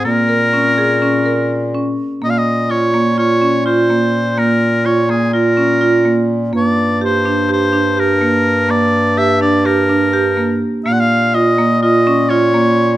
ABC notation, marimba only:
X:1
M:9/8
L:1/8
Q:3/8=83
K:Bbm
V:1 name="Marimba"
B, B D A D B2 D2 | B,2 F B, F D F B,2 | B,2 F B, F D F B,2 | B,2 =G =D G D G B,2 |
B,2 =G =D G D G B,2 | B,2 F B, F D F B,2 |]